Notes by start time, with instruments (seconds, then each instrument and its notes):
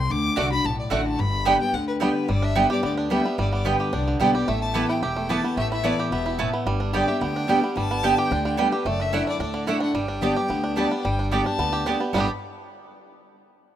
Already playing: fiddle C6
0.10 upright bass D2, steel-string acoustic guitar D3, fiddle D6
0.36 upright bass C2, steel-string acoustic guitar D3 A3 D4 F#4, mandolin A3 F#4 D5 F#5, five-string banjo A3 D4
0.51 steel-string acoustic guitar D4 F#4, fiddle B5
0.64 upright bass B1, steel-string acoustic guitar A2, fiddle A5
0.79 fiddle D5
0.90 upright bass A1, steel-string acoustic guitar D3 A3 D4 F#4, mandolin A3 F#4 D5 F#5, five-string banjo A3 D4, fiddle F#5
1.07 fiddle A5
1.19 upright bass G1, steel-string acoustic guitar G2, fiddle B5
1.45 steel-string acoustic guitar D3 G3 B3 G4, five-string banjo G3 B3 D4, mandolin B3 G4 D5 G5
1.60 steel-string acoustic guitar B3 G4, fiddle G5
1.73 upright bass D2, steel-string acoustic guitar D3, fiddle F#5
1.87 fiddle B4
2.00 steel-string acoustic guitar D3 G3 B3 G4, five-string banjo G3 B3 D4, mandolin B3 G4 D5 G5, fiddle B4
2.28 upright bass G1, steel-string acoustic guitar G2, five-string banjo G3, fiddle D5
2.42 five-string banjo D4, fiddle E5
2.55 steel-string acoustic guitar D3 G3 B3 G4, five-string banjo G3, mandolin B3 G4 D5 G5
2.70 steel-string acoustic guitar B3 G4, five-string banjo G4, fiddle D5
2.83 upright bass D2, steel-string acoustic guitar D3, five-string banjo B3, fiddle D5
2.97 five-string banjo D4, fiddle D5
3.10 steel-string acoustic guitar D3 G3 B3 G4, five-string banjo G3, mandolin B3 G4 D5 G5, fiddle E5
3.24 five-string banjo B3, steel-string acoustic guitar B3 G4
3.38 upright bass G1, steel-string acoustic guitar G2, five-string banjo G3, fiddle D5
3.53 five-string banjo B3, fiddle D5
3.64 steel-string acoustic guitar D3 G3 B3 G4, mandolin B3 G4 D5 G5, five-string banjo D4, fiddle B4
3.80 five-string banjo G4
3.93 upright bass C2, steel-string acoustic guitar D3, five-string banjo D4, fiddle D5
4.08 five-string banjo D3
4.20 upright bass B1, steel-string acoustic guitar D3 G3 B3 G4, five-string banjo G3, mandolin B3 G4 D5 G5, fiddle D5
4.34 steel-string acoustic guitar B3 G4, five-string banjo G4, fiddle D5
4.48 upright bass A1, steel-string acoustic guitar A2, five-string banjo A3, fiddle E5
4.62 fiddle A5
4.74 steel-string acoustic guitar E3 A3 B3 E4, mandolin B3 E4 B4 A5, five-string banjo G4
4.88 five-string banjo E4, fiddle G5
5.02 upright bass E1, steel-string acoustic guitar E2, five-string banjo G4, fiddle G5
5.16 five-string banjo A3
5.29 steel-string acoustic guitar E3 A3 B3 E4, mandolin B3 E4 B4 A5, five-string banjo G4, fiddle A5
5.43 five-string banjo B3, steel-string acoustic guitar B3 E4
5.56 upright bass A1, steel-string acoustic guitar A2, five-string banjo A3, fiddle E5
5.71 five-string banjo E4, fiddle E5
5.84 steel-string acoustic guitar E3 A3 B3 E4, five-string banjo A3, mandolin B3 E4 B4 A5, fiddle D5
5.99 five-string banjo G4
6.11 upright bass E1, steel-string acoustic guitar B2, five-string banjo B3, fiddle E5
6.26 five-string banjo E4
6.39 steel-string acoustic guitar A2, five-string banjo A3, mandolin B3 E4 B4 A5
6.53 five-string banjo B3
6.66 upright bass G1, steel-string acoustic guitar G2, five-string banjo G3
6.80 five-string banjo D4
6.93 steel-string acoustic guitar D3 G3 B3 G4, five-string banjo G3, mandolin B3 G4 D5 G5, fiddle D5
7.07 steel-string acoustic guitar B3 G4, five-string banjo G4, fiddle E5
7.21 upright bass D2, steel-string acoustic guitar D3, five-string banjo B3, fiddle G5
7.36 five-string banjo D4
7.47 steel-string acoustic guitar D3 G3 B3 G4, five-string banjo G3, mandolin B3 G4 D5 G5
7.62 five-string banjo B3, steel-string acoustic guitar B3 G4
7.76 upright bass G1, steel-string acoustic guitar G2, five-string banjo G3, fiddle A5
7.91 five-string banjo B3
8.03 steel-string acoustic guitar D3 G3 B3 G4, mandolin B3 G4 D5 G5, five-string banjo D4
8.18 five-string banjo G4, fiddle G5
8.31 upright bass D2, steel-string acoustic guitar D3, five-string banjo D4
8.45 five-string banjo D3, fiddle G5
8.57 steel-string acoustic guitar D3 G3 B3 G4, five-string banjo G3, mandolin B3 G4 D5 G5, fiddle B4
8.71 steel-string acoustic guitar B3 G4, five-string banjo G4, fiddle B4
8.85 upright bass F#1, steel-string acoustic guitar F#2, five-string banjo A3, fiddle D5
9.00 five-string banjo D4, fiddle E5
9.13 steel-string acoustic guitar D3 A3 D4 E4, mandolin A3 E4 D5 F#5, five-string banjo D4
9.27 five-string banjo D4, fiddle D5
9.39 upright bass D2, steel-string acoustic guitar A2, five-string banjo D4, fiddle D5
9.54 five-string banjo D3
9.67 steel-string acoustic guitar D3 A3 D4 E4, five-string banjo A3, mandolin A3 E4 D5 F#5, fiddle E5
9.80 five-string banjo D4, steel-string acoustic guitar D4 E4, fiddle F#5
9.94 upright bass G1, steel-string acoustic guitar G2, five-string banjo G3, fiddle G5
10.08 five-string banjo D4
10.21 steel-string acoustic guitar D3 G3 B3 G4, five-string banjo G3, mandolin B3 G4 D5 A5
10.35 steel-string acoustic guitar B3 G4, five-string banjo G4
10.48 upright bass D2, steel-string acoustic guitar D3, five-string banjo B3
10.64 five-string banjo D4
10.76 steel-string acoustic guitar D3 G3 B3 G4, five-string banjo G3, mandolin B3 G4 D5 A5, fiddle D5
10.90 five-string banjo B3, steel-string acoustic guitar B3 G4
11.03 upright bass G1, steel-string acoustic guitar G2, five-string banjo G3, fiddle G5
11.19 five-string banjo D4
11.30 steel-string acoustic guitar D3 G3 B3 G4, mandolin B3 G4 D5 A5, five-string banjo G4, fiddle G5
11.45 steel-string acoustic guitar B3 G4, five-string banjo D4, fiddle A5
11.58 upright bass D2, steel-string acoustic guitar D3, five-string banjo B3
11.73 five-string banjo G4
11.86 steel-string acoustic guitar D3 G3 B3 G4, mandolin B3 G4 D5 A5, five-string banjo D4
12.00 five-string banjo B3, steel-string acoustic guitar B3 G4
12.13 upright bass G1, steel-string acoustic guitar G2 A2 D3 G3 B3 G4, five-string banjo G3 B3, mandolin B3 G4 D5 A5, fiddle B5
12.18 five-string banjo D4 G4